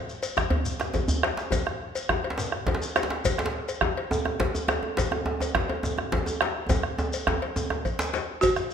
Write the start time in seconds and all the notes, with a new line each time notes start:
0.09 shekere
0.23 bombo rim, cowbell, djembe slap, shekere
0.37 bombo rim, bombo low, djembe slap, djembe tone, djembe bass, shekere
0.50 cowbell, djembe bass
0.65 bombo rim, djembe slap, shekere
0.80 bombo rim, djembe slap, djembe tone, shekere
0.94 bombo low, cowbell, djembe tone, djembe bass, shekere
1.08 bombo rim, djembe bass, shekere
1.23 bombo rim, cowbell, djembe slap, djembe tone
1.37 djembe slap, shekere
1.51 bombo low, cowbell, djembe tone, djembe bass, shekere
1.66 bombo rim, djembe tone
1.80 djembe slap
1.95 cowbell, djembe slap, shekere
2.09 bombo rim, bombo low, djembe slap, djembe tone, djembe bass
2.24 cowbell
2.30 djembe slap
2.38 djembe slap, shekere
2.52 bombo rim, djembe tone
2.66 bombo low, cowbell, djembe slap, djembe bass
2.75 djembe slap
2.82 shekere
2.96 bombo rim, cowbell, djembe slap, djembe tone, shekere
3.03 djembe slap
3.10 djembe slap
3.25 bombo low, cowbell, djembe bass, shekere
3.38 bombo rim, djembe slap, djembe tone
3.46 djembe slap
3.53 djembe slap
3.68 cowbell, djembe slap, shekere
3.81 bombo rim, bombo low, djembe slap, djembe tone, djembe bass
3.97 cowbell
4.11 djembe tone, shekere
4.25 bombo rim, djembe tone
4.40 bombo low, cowbell, djembe slap, djembe bass
4.55 djembe tone, shekere
4.68 bombo rim, cowbell, djembe slap, djembe tone, shekere
4.83 djembe tone
4.97 bombo low, cowbell, djembe slap, djembe bass, shekere
5.11 bombo rim, djembe tone
5.26 djembe slap, djembe tone
5.40 cowbell, djembe slap, djembe tone, shekere
5.55 bombo rim, bombo low, djembe slap, djembe tone, djembe bass
5.69 cowbell, djembe tone
5.83 djembe tone, shekere
5.98 bombo rim, djembe tone
6.12 bombo low, cowbell, djembe slap, djembe bass
6.26 djembe tone, shekere
6.41 bombo rim, cowbell, djembe slap, djembe tone, shekere
6.69 bombo rim, bombo low, cowbell, djembe slap, djembe tone, djembe bass, shekere
6.83 bombo rim, djembe slap
6.98 djembe slap, djembe tone, shekere
7.13 cowbell, shekere
7.27 bombo rim, bombo low, djembe slap, djembe tone, djembe bass
7.42 cowbell
7.56 djembe tone, shekere
7.70 bombo rim, djembe tone
7.85 bombo rim, bombo low, cowbell, shekere
7.99 djembe slap, shekere
8.14 cowbell, djembe slap, djembe tone, shekere
8.29 djembe slap
8.41 F#4, bombo low, cowbell, djembe bass, shekere
8.56 bombo rim, djembe slap, djembe tone, shekere